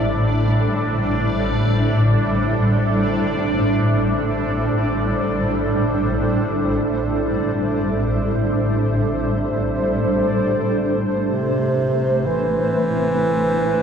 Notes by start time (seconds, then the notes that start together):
Already playing: A1 A2 G3 D4 A4 C5 D5
10.25 A1 A2 A3
10.90 B4
11.05 E4
11.28 C3
12.26 E3